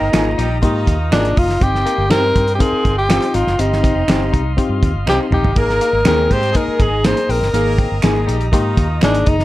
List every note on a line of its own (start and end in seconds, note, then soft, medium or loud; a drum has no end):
0.00 0.12 G1 medium
0.00 0.10 A#3 loud
0.00 0.63 D#4 medium
0.00 0.10 A#4 loud
0.00 9.45 D#5 medium
0.00 1.58 A#5 medium
0.12 0.35 G#1 medium
0.12 0.32 G#3 medium
0.12 0.46 A#3 medium
0.12 0.25 D#4 medium
0.12 0.47 D#4 medium
0.12 0.47 F4 medium
0.12 0.33 G#4 loud
0.12 0.26 G#4 medium
0.12 0.26 A#4 medium
0.12 finger snap medium
0.12 snare loud
0.12 closed hi-hat medium
0.37 0.64 A#1 medium
0.37 0.57 G3 loud
0.37 0.57 D#4 medium
0.37 0.58 G4 loud
0.37 closed hi-hat medium
0.62 0.84 G#2 loud
0.62 1.33 D#3 medium
0.62 0.96 A#3 medium
0.62 1.33 D#4 loud
0.62 0.96 D#4 medium
0.62 1.09 F4 medium
0.62 0.97 G4 medium
0.62 kick loud
0.62 closed hi-hat medium
0.87 1.09 D#2 loud
0.87 kick medium
0.87 closed hi-hat medium
1.11 1.34 G#1 loud
1.11 1.45 A#3 medium
1.11 1.40 D4 loud
1.11 1.30 D#4 medium
1.11 1.24 D#4 medium
1.11 1.45 D#4 medium
1.11 1.46 F4 medium
1.11 1.25 G#4 medium
1.11 1.25 A#4 loud
1.11 finger snap loud
1.11 snare loud
1.11 closed hi-hat medium
1.25 closed hi-hat soft
1.36 1.59 F#1 medium
1.36 1.55 D#4 medium
1.36 1.64 F4 medium
1.36 kick loud
1.36 open hi-hat medium
1.49 snare soft
1.60 1.83 G1 medium
1.60 1.94 C4 medium
1.60 1.94 D#4 medium
1.60 1.95 G4 medium
1.60 2.10 G4 loud
1.60 3.57 G5 medium
1.60 5.53 C6 medium
1.60 kick loud
1.60 closed hi-hat medium
1.75 snare soft
1.86 2.05 A#3 medium
1.86 closed hi-hat medium
1.98 2.09 G1 medium
2.10 2.32 G2 medium
2.10 2.43 C4 medium
2.10 2.57 C4 medium
2.10 2.23 D#4 medium
2.10 2.44 D#4 medium
2.10 2.23 G4 medium
2.10 2.44 G4 medium
2.10 2.51 A#4 loud
2.10 2.24 C5 loud
2.10 finger snap medium
2.10 snare loud
2.10 closed hi-hat medium
2.36 2.57 G2 loud
2.36 kick medium
2.36 closed hi-hat medium
2.48 closed hi-hat soft
2.55 2.93 C4 medium
2.55 2.62 G4 medium
2.60 2.93 D#4 medium
2.60 3.07 F4 medium
2.60 2.97 G#4 loud
2.60 2.93 A#4 medium
2.60 kick loud
2.60 closed hi-hat loud
2.72 muted fingered electric bass stroke soft
2.85 3.17 G1 medium
2.85 kick medium
2.85 closed hi-hat medium
2.98 3.36 G4 medium
3.09 3.42 C4 medium
3.09 3.22 D#4 loud
3.09 3.43 D#4 medium
3.09 3.43 F4 medium
3.09 3.22 G4 medium
3.09 3.23 C5 loud
3.09 finger snap medium
3.09 snare loud
3.09 closed hi-hat loud
3.22 closed hi-hat medium
3.34 3.45 G#1 medium
3.34 3.53 D#4 medium
3.34 3.61 F4 medium
3.34 closed hi-hat medium
3.47 3.58 F#1 medium
3.47 snare soft
3.59 3.91 G1 loud
3.59 3.78 C4 medium
3.59 3.92 C4 medium
3.59 3.92 D#4 medium
3.59 4.58 D#4 medium
3.59 3.93 G4 medium
3.59 5.54 F5 medium
3.59 closed hi-hat medium
3.73 snare soft
3.83 4.02 C4 medium
3.83 kick medium
3.83 closed hi-hat medium
3.96 4.07 F1 medium
4.08 4.30 G1 medium
4.08 4.41 C4 medium
4.08 4.20 D#4 medium
4.08 4.42 D#4 medium
4.08 4.21 G4 medium
4.08 4.42 G4 medium
4.08 4.21 C5 medium
4.08 finger snap loud
4.08 snare loud
4.08 closed hi-hat medium
4.33 4.55 C2 medium
4.33 4.52 D#4 medium
4.33 kick medium
4.33 closed hi-hat medium
4.57 4.90 C4 loud
4.57 4.91 D#4 medium
4.57 5.04 F4 medium
4.57 4.91 G4 loud
4.57 kick medium
4.57 closed hi-hat loud
4.69 4.80 G2 medium
4.83 4.93 D#2 loud
4.83 kick medium
4.83 closed hi-hat medium
4.94 5.05 G1 medium
5.06 5.17 C2 medium
5.06 5.40 C4 medium
5.06 5.19 D#4 medium
5.06 5.26 D#4 medium
5.06 5.40 D#4 medium
5.06 5.19 G4 loud
5.06 5.20 G4 medium
5.06 5.41 G4 medium
5.06 5.20 C5 loud
5.06 finger snap loud
5.06 snare medium
5.31 5.42 A#1 medium
5.31 5.51 D#4 medium
5.31 5.60 G4 medium
5.31 mid tom loud
5.43 5.54 G#1 medium
5.43 floor tom medium
5.55 5.78 G#1 medium
5.55 5.89 A#3 medium
5.55 6.02 A#3 loud
5.55 5.89 D#4 medium
5.55 5.90 G#4 medium
5.55 6.03 A#4 loud
5.55 6.07 A#4 loud
5.55 9.45 A#5 medium
5.55 kick loud
5.55 closed hi-hat medium
5.70 snare soft
5.81 6.00 A#3 medium
5.81 closed hi-hat medium
5.93 6.04 G#1 medium
6.05 6.27 D#2 medium
6.05 6.25 G#3 medium
6.05 6.38 A#3 medium
6.05 6.18 A#3 medium
6.05 6.52 C4 medium
6.05 6.18 D#4 medium
6.05 6.39 D#4 medium
6.05 6.25 G#4 medium
6.05 6.19 G#4 medium
6.05 6.40 G#4 medium
6.05 6.34 A#4 loud
6.05 finger snap loud
6.05 snare loud
6.05 closed hi-hat medium
6.29 6.52 G#2 loud
6.29 6.49 G3 loud
6.29 6.49 G4 loud
6.29 6.59 C5 loud
6.29 kick medium
6.29 closed hi-hat medium
6.43 closed hi-hat soft
6.53 7.00 G#3 loud
6.53 6.88 A#3 medium
6.53 6.88 D#4 medium
6.53 7.02 D#4 medium
6.53 7.00 G#4 loud
6.53 6.88 A#4 medium
6.53 kick loud
6.53 closed hi-hat loud
6.57 6.83 A#4 medium
6.68 muted fingered electric bass stroke soft
6.80 7.12 G#1 medium
6.80 7.08 G#4 medium
6.80 kick medium
6.80 closed hi-hat medium
7.04 7.16 A#3 medium
7.04 7.38 A#3 medium
7.04 7.17 D#4 medium
7.04 7.38 D#4 medium
7.04 7.17 G#4 medium
7.04 7.38 G#4 medium
7.04 7.33 C5 loud
7.04 finger snap loud
7.04 snare loud
7.04 closed hi-hat loud
7.17 closed hi-hat medium
7.29 7.40 A#1 medium
7.29 7.48 C4 medium
7.29 7.80 A#4 medium
7.29 open hi-hat medium
7.41 7.52 G1 medium
7.41 snare soft
7.53 7.86 G#1 loud
7.53 7.86 A#3 medium
7.53 8.00 A#3 loud
7.53 7.72 A#3 medium
7.53 7.87 D#4 medium
7.53 7.87 G#4 medium
7.53 8.00 A#4 loud
7.53 closed hi-hat medium
7.78 7.97 C4 medium
7.78 kick medium
7.78 closed hi-hat medium
7.92 8.02 G1 medium
8.02 8.25 G#1 medium
8.02 8.23 G#3 medium
8.02 8.15 A#3 medium
8.02 8.36 A#3 medium
8.02 8.15 D#4 medium
8.02 8.36 D#4 medium
8.02 8.23 G#4 loud
8.02 8.16 G#4 medium
8.02 8.37 G#4 loud
8.02 finger snap medium
8.02 snare loud
8.02 closed hi-hat medium
8.26 8.54 A#1 loud
8.26 8.46 G3 loud
8.26 8.46 D#4 medium
8.26 8.47 G4 loud
8.26 closed hi-hat medium
8.41 closed hi-hat soft
8.51 8.74 G#2 loud
8.51 9.22 D#3 medium
8.51 8.85 A#3 medium
8.51 9.22 D#4 loud
8.51 8.86 D#4 medium
8.51 8.99 F4 medium
8.51 8.86 G4 loud
8.51 kick loud
8.51 closed hi-hat loud
8.77 8.99 D#2 loud
8.77 kick medium
8.77 closed hi-hat medium
9.01 9.24 G#1 loud
9.01 9.34 A#3 medium
9.01 9.14 A#3 medium
9.01 9.30 D4 loud
9.01 9.20 D#4 medium
9.01 9.14 D#4 loud
9.01 9.35 D#4 medium
9.01 9.14 G#4 loud
9.01 9.35 G#4 medium
9.01 finger snap medium
9.01 snare loud
9.01 closed hi-hat loud
9.14 closed hi-hat medium
9.26 9.45 F#1 medium
9.26 9.45 D#4 medium
9.26 kick loud
9.26 closed hi-hat medium
9.39 snare soft